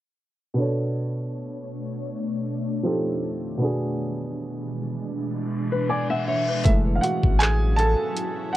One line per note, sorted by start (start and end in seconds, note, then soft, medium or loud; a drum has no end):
0.54 2.79 B2 medium
0.54 2.83 B2 medium
0.54 3.58 A3 medium
0.54 2.80 B3 medium
0.54 2.81 D4 medium
0.54 2.83 D4 medium
0.54 2.83 C#5 medium
0.59 2.82 A4 medium
0.59 2.83 C#5 medium
2.83 3.61 F2 medium
2.83 3.61 D#3 medium
2.83 3.60 F3 medium
2.83 3.61 C4 medium
2.83 3.61 D#4 medium
2.83 3.61 G4 medium
2.83 3.62 G4 medium
2.83 3.62 A4 medium
3.58 6.59 B2 medium
3.58 6.62 B2 medium
3.58 6.62 E3 medium
3.58 6.62 G#3 medium
3.58 6.60 B3 medium
3.58 6.62 D4 medium
3.58 6.61 D4 medium
3.63 6.62 F#4 medium
3.63 6.63 G#4 medium
5.13 reverse cymbal medium
5.72 5.88 B4 medium
5.89 6.09 D5 medium
5.89 6.08 G#5 medium
6.10 6.26 E5 medium
6.10 6.26 F#5 medium
6.27 6.48 C#5 medium
6.27 6.62 E5 medium
6.48 6.84 B4 medium
6.64 6.99 F#1 loud
6.64 7.75 E3 medium
6.64 8.57 F#3 medium
6.64 7.75 G#3 medium
6.64 7.75 A3 medium
6.64 8.57 C#4 medium
6.64 8.57 E4 medium
6.64 6.73 E4 medium
6.64 8.57 F#4 loud
6.64 6.71 E5 loud
6.64 kick loud
6.64 closed hi-hat medium
6.95 7.02 F5 medium
7.01 7.39 F#4 medium
7.01 7.41 F#5 medium
7.01 closed hi-hat medium
7.23 7.96 A1 loud
7.23 kick medium
7.39 7.77 G#4 medium
7.39 7.79 G#5 loud
7.39 clap loud
7.39 closed hi-hat medium
7.76 8.51 A4 medium
7.76 8.56 A5 loud
7.76 closed hi-hat medium
8.17 closed hi-hat medium
8.53 8.57 F#5 loud